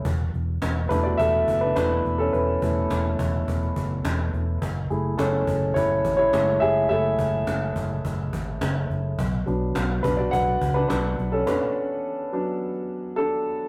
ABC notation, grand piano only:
X:1
M:4/4
L:1/16
Q:1/4=105
K:Emix
V:1 name="Grand piano"
z6 [DB] [Fd] [Ae]3 [DB] B3 [CA] | [EB]6 z8 z2 | z4 [CA]4 [Ec]3 [Ec]3 [Ge]2 | [Ae]4 z12 |
z6 [DB] [Fd] [Bf]3 [DB] [DB]3 [CA] | [DB]6 z6 [DA]4 |]
V:2 name="Grand piano"
z6 [A,B,E]2 z4 [A,B,E]2 z2 | z2 [A,B,E]2 z12 | z2 [A,EG]8- [A,EG]2 [G,A,E]2 z2 | [A,EG]2 z12 z2 |
z2 [F,B,D]12- [F,B,D]2- | [F,B,D]2 z4 [F,B,D]2 z8 |]